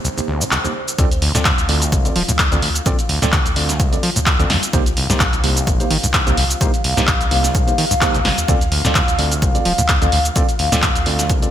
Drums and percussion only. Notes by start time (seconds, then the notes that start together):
0.05 shaker
0.18 shaker
0.41 shaker
0.51 clap, shaker
0.65 shaker
0.88 shaker
0.99 kick, closed hi-hat, shaker
1.11 closed hi-hat, shaker
1.22 open hi-hat
1.35 snare, closed hi-hat, shaker
1.45 kick, clap, closed hi-hat, shaker
1.58 closed hi-hat, shaker
1.69 open hi-hat
1.82 closed hi-hat, shaker
1.92 kick, closed hi-hat, shaker
2.05 closed hi-hat, shaker
2.16 open hi-hat
2.29 closed hi-hat, shaker
2.38 kick, clap, closed hi-hat, shaker
2.52 closed hi-hat, shaker
2.62 open hi-hat
2.75 closed hi-hat, shaker
2.86 kick, closed hi-hat, shaker
2.99 closed hi-hat, shaker
3.09 open hi-hat
3.22 snare, shaker
3.32 kick, clap, closed hi-hat, shaker
3.46 closed hi-hat, shaker
3.56 open hi-hat
3.69 snare, closed hi-hat, shaker
3.80 kick, closed hi-hat, shaker
3.93 closed hi-hat, shaker
4.03 open hi-hat
4.16 closed hi-hat, shaker
4.26 kick, clap, closed hi-hat, shaker
4.40 closed hi-hat, shaker
4.50 snare, open hi-hat
4.63 closed hi-hat, shaker
4.73 kick, closed hi-hat, shaker
4.86 closed hi-hat, shaker
4.97 open hi-hat
5.10 snare, closed hi-hat, shaker
5.20 kick, clap, closed hi-hat, shaker
5.33 closed hi-hat, shaker
5.44 open hi-hat
5.57 closed hi-hat, shaker
5.67 kick, closed hi-hat, shaker
5.80 closed hi-hat, shaker
5.91 open hi-hat
6.04 closed hi-hat, shaker
6.13 kick, clap, closed hi-hat, shaker
6.27 closed hi-hat, shaker
6.37 open hi-hat
6.50 closed hi-hat, shaker
6.61 kick, closed hi-hat, shaker
6.74 closed hi-hat, shaker
6.84 open hi-hat
6.97 snare, closed hi-hat, shaker
7.07 kick, clap, closed hi-hat, shaker
7.21 closed hi-hat, shaker
7.31 open hi-hat
7.44 snare, closed hi-hat, shaker
7.55 kick, closed hi-hat, shaker
7.68 closed hi-hat, shaker
7.78 open hi-hat
7.91 closed hi-hat, shaker
8.01 kick, clap, closed hi-hat, shaker
8.14 closed hi-hat, shaker
8.25 snare, open hi-hat
8.38 closed hi-hat, shaker
8.48 kick, closed hi-hat, shaker
8.61 closed hi-hat, shaker
8.72 open hi-hat
8.85 snare, closed hi-hat, shaker
8.95 kick, clap, closed hi-hat, shaker
9.08 closed hi-hat, shaker
9.19 open hi-hat
9.32 closed hi-hat, shaker
9.42 kick, closed hi-hat, shaker
9.55 closed hi-hat, shaker
9.65 open hi-hat
9.78 closed hi-hat, shaker
9.88 kick, clap, closed hi-hat, shaker
10.02 closed hi-hat, shaker
10.12 open hi-hat
10.25 closed hi-hat, shaker
10.36 kick, closed hi-hat, shaker
10.49 closed hi-hat, shaker
10.59 open hi-hat
10.72 snare, closed hi-hat, shaker
10.82 kick, clap, closed hi-hat, shaker
10.96 closed hi-hat, shaker
11.06 open hi-hat
11.19 snare, closed hi-hat, shaker
11.30 kick, closed hi-hat, shaker
11.42 closed hi-hat, shaker